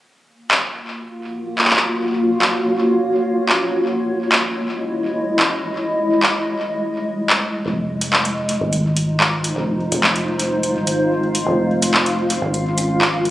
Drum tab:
HH |--------------------------------|--------------------------------|--------------------------------|--------------------------------|
CP |--------x-----------------xxxx--|--------x-----------------x-----|--------x-----------------x-----|--------x-----------------x-----|

HH |------x---x---x---x---x-------x-|------x---x---x---x---x-------x-|------x---x---x---x---x-------x-|
CP |--------x-----------------x-----|--------x-----------------------|--------x-----------------x-----|